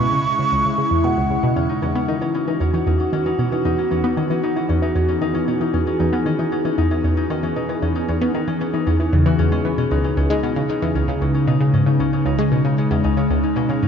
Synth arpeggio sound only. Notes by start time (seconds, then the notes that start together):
0.13 C#3
0.39 C#3
0.52 C#2
0.65 C#3
0.78 C#3
0.91 E2
1.04 B2
1.17 C#2
1.30 C#3
1.43 B2
1.56 E2
1.82 E2
1.95 B3
2.08 D#3
2.21 E3
2.48 E3
2.60 E2
2.73 E3
2.86 E2
3.13 D#3
3.26 E3
3.39 B2
3.52 E3
3.65 E2
3.91 E2
4.04 B3
4.17 D#3
4.30 E3
4.56 E3
4.69 E2
4.82 E3
4.95 E2
5.21 D#3
5.34 E3
5.47 B2
5.60 E3
5.74 E2
6.00 E2
6.13 B3
6.26 D#3
6.39 E3
6.65 E3
6.78 E2
6.91 E3
7.04 E2
7.30 D#3
7.43 E3
7.56 B2
7.69 E3
7.82 E2
8.09 E2
8.21 B3
8.34 D#3
8.48 E3
8.74 E3
8.87 E2
9.00 E3
9.13 E2
9.26 E3
9.39 E2
9.52 G#3
9.65 E3
9.78 B2
9.91 C#2
10.17 C#2
10.30 G#3
10.43 B2
10.56 C#3
10.82 E2
10.95 C#2
11.08 C#3
11.21 C#2
11.47 B2
11.60 C#3
11.73 G#2
11.86 C#3
11.99 C#2
12.26 C#2
12.39 G#3
12.52 B2
12.65 C#3
12.91 E2
13.04 C#2
13.17 C#3
13.30 C#2
13.56 B2
13.69 C#3
13.82 G#2